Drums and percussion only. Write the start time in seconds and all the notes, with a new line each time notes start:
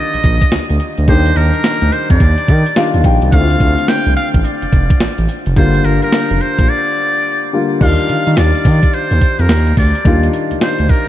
0.14 closed hi-hat
0.24 kick, closed hi-hat
0.42 kick, closed hi-hat
0.52 snare, closed hi-hat
0.69 closed hi-hat
0.80 closed hi-hat
0.98 closed hi-hat
1.08 kick, closed hi-hat
1.26 closed hi-hat
1.36 closed hi-hat
1.54 closed hi-hat
1.64 snare, closed hi-hat
1.82 closed hi-hat
1.92 closed hi-hat
2.10 kick, closed hi-hat
2.20 kick, closed hi-hat
2.38 closed hi-hat
2.48 kick, closed hi-hat
2.66 closed hi-hat
2.76 snare, closed hi-hat
2.94 closed hi-hat
3.04 kick, closed hi-hat
3.22 closed hi-hat
3.32 kick, closed hi-hat, tambourine
3.50 closed hi-hat
3.60 kick, closed hi-hat, tambourine
3.78 closed hi-hat
3.88 snare, closed hi-hat, tambourine
4.06 closed hi-hat
4.17 closed hi-hat, tambourine
4.34 kick, closed hi-hat
4.45 closed hi-hat
4.62 closed hi-hat
4.72 kick, closed hi-hat, tambourine
4.90 kick, closed hi-hat
5.00 snare, closed hi-hat, tambourine
5.18 closed hi-hat
5.29 closed hi-hat, tambourine
5.46 closed hi-hat
5.56 kick, closed hi-hat, tambourine
5.74 closed hi-hat
5.84 closed hi-hat, tambourine
6.02 closed hi-hat
6.12 snare, closed hi-hat, tambourine
6.30 closed hi-hat
6.41 closed hi-hat, tambourine
6.59 kick, closed hi-hat
7.81 kick, closed hi-hat, crash, tambourine
7.99 closed hi-hat
8.09 closed hi-hat, tambourine
8.27 closed hi-hat
8.37 snare, closed hi-hat, tambourine
8.55 closed hi-hat
8.65 kick, open hi-hat, tambourine
8.83 kick, closed hi-hat
8.93 closed hi-hat, tambourine
9.11 closed hi-hat
9.21 kick, closed hi-hat
9.39 closed hi-hat
9.49 snare, closed hi-hat, tambourine
9.67 closed hi-hat
9.77 kick, open hi-hat, tambourine
9.95 closed hi-hat
10.05 kick, closed hi-hat, tambourine
10.23 closed hi-hat
10.33 closed hi-hat, tambourine
10.51 closed hi-hat
10.61 snare, closed hi-hat, tambourine
10.79 closed hi-hat
10.89 kick, open hi-hat, tambourine